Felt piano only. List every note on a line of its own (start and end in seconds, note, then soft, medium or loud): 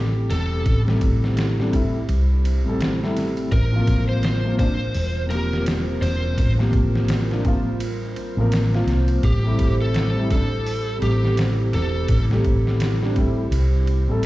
0.00 0.80 C3 medium
0.00 0.82 G3 medium
0.00 0.83 A3 medium
0.00 0.85 G4 medium
0.85 1.53 C3 medium
0.85 1.53 G3 medium
0.85 1.54 A3 medium
0.89 1.55 G4 loud
1.57 1.69 C3 medium
1.57 1.70 G3 medium
1.57 1.71 A3 medium
1.62 1.71 D4 medium
1.71 1.94 C3 loud
1.71 1.95 G3 medium
1.71 1.95 A3 medium
1.76 1.96 E4 loud
2.64 2.96 C3 medium
2.64 2.97 G3 medium
2.64 2.97 A3 medium
2.69 2.98 A4 loud
3.01 3.50 C3 medium
3.01 3.51 G3 medium
3.01 3.51 A3 medium
3.05 3.52 E4 loud
3.71 4.38 C3 medium
3.71 4.39 F3 medium
3.71 4.40 A#3 medium
3.76 4.41 F4 loud
4.43 4.55 C3 medium
4.43 4.56 F3 medium
4.43 4.57 A#3 medium
4.47 4.57 F4 medium
4.58 4.72 C3 medium
4.58 4.73 F3 medium
4.58 4.73 A#3 medium
4.62 4.74 D4 loud
5.26 6.51 C3 medium
5.26 6.53 F3 medium
5.32 6.54 A#3 medium
5.32 6.56 G4 medium
6.57 7.24 C3 medium
6.57 7.25 F3 medium
6.57 7.25 A#3 medium
6.61 7.26 G4 loud
7.29 7.41 C3 medium
7.29 7.41 F3 medium
7.29 7.42 A#3 medium
7.34 7.43 D4 medium
7.44 7.66 C3 loud
7.44 7.66 F3 medium
7.44 7.67 A#3 medium
7.48 7.68 F4 loud
8.37 8.68 C3 medium
8.37 8.68 F3 medium
8.37 8.69 A#3 medium
8.41 8.70 A#4 loud
8.71 9.21 C3 medium
8.71 9.22 F3 medium
8.71 9.22 A#3 medium
8.75 9.23 F4 loud
9.43 10.10 C3 medium
9.43 10.11 G3 medium
9.43 10.11 A3 medium
9.47 10.12 E4 medium
10.15 10.27 C3 medium
10.15 10.27 G3 medium
10.15 10.28 A3 medium
10.19 10.29 E4 loud
10.30 10.44 C3 medium
10.30 10.44 G3 medium
10.30 10.45 A3 medium
10.35 10.46 D4 loud
10.99 12.23 C3 medium
10.99 12.25 G3 medium
11.05 12.26 A3 medium
11.05 12.28 G4 medium
12.29 12.96 C3 medium
12.29 12.97 G3 medium
12.29 12.98 A3 medium
12.34 12.98 G4 loud
13.01 13.12 C3 medium
13.01 13.13 G3 medium
13.01 13.14 A3 medium
13.05 13.15 D4 medium
13.16 13.38 C3 loud
13.16 13.38 G3 medium
13.16 13.39 A3 medium
13.20 13.40 E4 loud
14.07 14.26 C3 medium
14.07 14.26 G3 medium
14.07 14.26 A3 medium
14.11 14.26 A4 loud